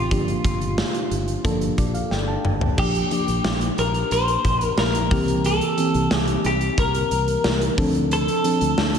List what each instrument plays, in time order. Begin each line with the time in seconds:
Already playing: fingered electric bass A1, fm electric piano E3 A3 C4 G4, clean electric guitar F4
0.11 fingered electric bass G1, fm electric piano F3 A#3 D4 G4, kick, closed hi-hat
0.28 closed hi-hat
0.45 fingered electric bass G1, kick, closed hi-hat
0.61 closed hi-hat
0.78 snare
0.94 closed hi-hat
1.11 fingered electric bass G1, closed hi-hat
1.28 closed hi-hat
1.44 fingered electric bass G1, fm electric piano F3 A#3 D4 A4, kick, closed hi-hat
1.61 closed hi-hat
1.78 fingered electric bass A#1, fm electric piano D5, kick, closed hi-hat
1.94 fm electric piano F5, closed hi-hat
2.11 fingered electric bass G1, fm electric piano G5, snare
2.28 fm electric piano A5
2.45 fingered electric bass G1, mid tom
2.61 floor tom
2.77 fingered electric bass A#1, fm electric piano F3 A#3 D4 G4, clean electric guitar G4, kick, crash
2.95 closed hi-hat
3.11 fm electric piano F3 A#3 D4 G4, closed hi-hat
3.28 fingered electric bass A#1, closed hi-hat
3.44 fingered electric bass A#1, snare
3.61 closed hi-hat
3.78 fingered electric bass A#1, clean electric guitar A#4, closed hi-hat
3.94 closed hi-hat
4.11 fingered electric bass A#1, clean electric guitar C5, closed hi-hat
4.28 closed hi-hat
4.45 fingered electric bass A#1, kick, closed hi-hat
4.61 clean electric guitar A#4, closed hi-hat
4.78 fingered electric bass A#1, clean electric guitar A#4, snare
4.95 closed hi-hat
5.11 fingered electric bass C2, fm electric piano E3 A#3 C4 G4, kick, open hi-hat
5.28 closed hi-hat
5.45 clean electric guitar A4, closed hi-hat
5.61 closed hi-hat
5.77 fm electric piano E3 A#3 C4 G4, closed hi-hat
5.94 fingered electric bass C2, closed hi-hat
6.11 fingered electric bass C2, snare
6.18 clean electric guitar G4
6.27 closed hi-hat
6.44 fingered electric bass C2, clean electric guitar G4, closed hi-hat
6.61 closed hi-hat
6.78 fingered electric bass C2, clean electric guitar A#4, kick, closed hi-hat
6.95 closed hi-hat
7.11 fingered electric bass C2, closed hi-hat
7.28 closed hi-hat
7.44 fingered electric bass C2, snare
7.62 closed hi-hat
7.77 fingered electric bass D2, fm electric piano F3 C4 D4 A4, kick, open hi-hat
7.95 closed hi-hat
8.11 clean electric guitar A4, closed hi-hat
8.28 closed hi-hat
8.44 fm electric piano F3 C4 D4 A4, closed hi-hat
8.61 fingered electric bass D2, closed hi-hat
8.78 fingered electric bass D2, snare
8.95 closed hi-hat